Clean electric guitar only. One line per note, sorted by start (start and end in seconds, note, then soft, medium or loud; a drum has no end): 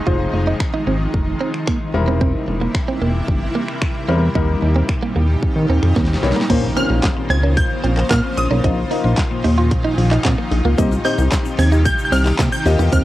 0.07 0.16 F4 medium
0.34 muted clean electric guitar stroke soft
0.47 0.57 D#4 medium
0.61 muted clean electric guitar stroke soft
0.74 0.83 D#4 medium
0.87 0.97 C4 medium
1.41 1.50 C4 medium
1.67 1.77 A#3 medium
1.94 muted clean electric guitar stroke soft
2.08 2.17 C4 medium
2.21 2.31 C4 medium
2.48 muted clean electric guitar stroke soft
2.61 2.71 A#3 medium
2.75 muted clean electric guitar stroke soft
2.88 2.98 C4 medium
3.02 3.11 A#3 medium
3.55 3.65 A#3 medium
4.09 4.18 C4 medium
4.35 4.45 D#4 medium
4.62 muted clean electric guitar stroke soft
4.76 4.85 C4 medium
4.89 muted clean electric guitar stroke soft
5.03 5.12 A#3 medium
5.16 5.25 A#3 medium
5.70 5.79 C4 medium
5.96 6.06 A#3 medium
6.23 muted clean electric guitar stroke soft
6.36 6.46 A#3 medium
6.50 6.59 A#3 medium
6.77 6.86 C4 medium
6.90 muted clean electric guitar stroke soft
7.03 muted clean electric guitar stroke soft
7.30 7.40 C4 medium
7.43 7.53 C#4 medium
7.84 7.93 C4 medium
8.11 8.20 A#3 medium
8.37 muted clean electric guitar stroke soft
8.51 8.60 C#4 medium
8.64 8.74 C4 medium
8.91 9.01 D#4 medium
9.04 muted clean electric guitar stroke soft
9.18 muted clean electric guitar stroke soft
9.44 9.54 D#4 medium
9.58 9.67 F4 medium
9.84 9.94 D#4 medium
9.98 muted clean electric guitar stroke soft
10.11 10.21 D#4 medium
10.25 10.34 C4 medium
10.38 muted clean electric guitar stroke soft
10.65 10.75 A#3 medium
10.78 10.88 A#3 medium
11.05 11.15 C4 medium
11.19 muted clean electric guitar stroke soft
11.32 muted clean electric guitar stroke soft
11.59 11.68 C4 medium
11.72 11.82 D#4 medium
12.12 12.22 C4 medium
12.39 12.49 A#3 medium
12.66 muted clean electric guitar stroke soft
12.79 12.89 D#4 medium
12.92 13.02 C4 medium